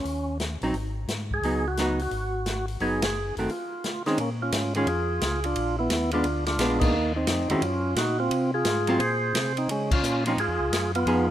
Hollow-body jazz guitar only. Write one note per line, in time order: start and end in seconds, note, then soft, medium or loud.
0.63 0.74 F#3 medium
0.63 0.74 C4 medium
0.63 0.74 D#4 medium
1.44 1.64 F#3 soft
1.44 1.64 B3 soft
1.44 1.64 D#4 soft
1.78 1.98 F#3 soft
1.78 1.98 B3 soft
1.78 1.98 D#4 medium
2.81 3.01 F#3 soft
2.81 3.01 B3 soft
2.81 3.01 D#4 medium
3.39 3.49 D#3 soft
3.39 3.49 A3 soft
3.39 3.50 C4 soft
4.06 4.17 D#3 medium
4.06 4.18 G#3 medium
4.06 4.18 C#4 medium
4.76 4.86 D#3 medium
4.76 4.87 G#3 medium
4.76 4.87 C#4 medium
6.13 6.24 G#3 soft
6.13 6.24 B3 medium
6.13 6.25 D4 medium
6.60 6.94 G#3 medium
6.60 6.94 B3 medium
6.60 6.94 D4 medium
7.50 7.61 D#3 medium
7.50 7.61 G#3 medium
7.50 7.62 C#4 medium
7.50 7.62 F#4 medium
8.88 8.99 F#3 medium
8.88 8.99 C4 medium
8.88 9.00 F4 medium
10.27 10.37 F3 medium
10.27 10.38 C4 medium
10.27 10.38 D#4 medium
11.07 11.27 F3 medium
11.07 11.27 B3 medium
11.07 11.27 D#4 medium
11.07 11.27 G#4 medium